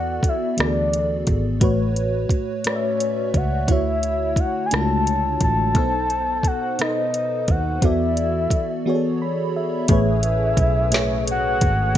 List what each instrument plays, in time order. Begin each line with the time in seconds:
Already playing: fingered electric bass E2, fm electric piano E3 B3 F#4 A4 D5, soft synth lead F#5
0.23 muted fingered electric bass stroke, kick, closed hi-hat
0.29 soft synth lead E5
0.54 fm electric piano E3 B3, soft synth lead E5
0.58 fingered electric bass D2, fm electric piano F#4 G#4 D5, soft synth lead D5, cross-stick, closed hi-hat
0.66 fm electric piano A4
0.93 closed hi-hat
1.27 fingered electric bass G#1, kick, closed hi-hat
1.60 fingered electric bass A1, fm electric piano A2 A3 F#4 B4 C#5, kick, closed hi-hat
1.96 closed hi-hat
2.29 muted fingered electric bass stroke, kick, closed hi-hat
2.64 fm electric piano A2 A3 F#4 B4, soft synth lead C#5, cross-stick, closed hi-hat
2.69 fm electric piano D5
2.76 fm electric piano E5
3.00 closed hi-hat
3.34 fingered electric bass C#2, soft synth lead F#5, kick, closed hi-hat
3.67 fingered electric bass D2, fm electric piano D3 A3 E4 F#4, soft synth lead E5, kick, closed hi-hat
3.72 fm electric piano C#5
4.03 closed hi-hat
4.36 soft synth lead F#5, muted fingered electric bass stroke, kick, closed hi-hat
4.66 soft synth lead G#5
4.71 fingered electric bass C#2, fm electric piano G#3 A3 D4 E4 F4, soft synth lead A5, cross-stick, closed hi-hat
4.80 fm electric piano F#4
5.07 closed hi-hat
5.41 fingered electric bass A1, soft synth lead A5, kick, closed hi-hat
5.75 fingered electric bass B1, fm electric piano B2 B3 D#4 A4 C5, kick, closed hi-hat
6.10 closed hi-hat
6.43 soft synth lead F#5, muted fingered electric bass stroke, kick, closed hi-hat
6.79 fm electric piano B2 B3 D#4 A4 B4, soft synth lead D#5, cross-stick, closed hi-hat
6.89 fm electric piano C5
7.14 closed hi-hat
7.48 fingered electric bass D#2, soft synth lead F#5, kick, closed hi-hat
7.81 fingered electric bass E2, fm electric piano E3 B3 F#4 A4, soft synth lead E5, kick, closed hi-hat
7.85 fm electric piano D5
8.17 closed hi-hat
8.50 muted fingered electric bass stroke, kick, closed hi-hat
8.85 fm electric piano E3 B3 F#4 G#4 C#5
8.95 fm electric piano A4
9.22 fm electric piano B5
9.56 fm electric piano E5
9.88 fingered electric bass A1, fm electric piano A2 A3 G#4 B4, tonewheel organ A3 C#4 G#4, soft synth lead E5, kick, closed hi-hat
9.92 fm electric piano C#5
10.23 closed hi-hat
10.57 fingered electric bass B1, kick, closed hi-hat
10.91 fm electric piano A2 A3 G#4 B4, snare, closed hi-hat
10.95 fm electric piano C#5
11.28 soft synth lead F#5, closed hi-hat
11.61 fingered electric bass G#1, kick, closed hi-hat